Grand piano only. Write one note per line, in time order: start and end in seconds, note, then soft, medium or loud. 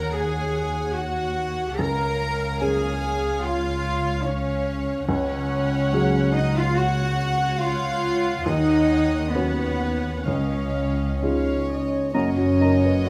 0.00 1.81 D#2 soft
0.00 1.74 C#4 soft
0.00 1.75 F#4 soft
0.00 1.75 A#4 soft
1.79 2.59 C#2 soft
2.61 5.04 C#4 soft
2.61 5.04 G#4 soft
2.61 5.04 A#4 soft
5.09 5.90 C#2 medium
5.93 8.42 F#3 soft
5.93 8.42 C#4 soft
5.93 8.42 G#4 medium
8.46 9.31 D#2 medium
9.35 10.23 C#4 soft
9.35 10.24 F#4 soft
9.35 10.24 B4 soft
10.28 11.19 C#2 soft
11.22 12.11 D#4 soft
11.22 12.11 F4 soft
11.22 12.11 G#4 soft
12.14 13.09 F#2 medium
12.37 12.74 F#4 soft
12.61 12.98 A#4 soft
12.85 13.07 B4 soft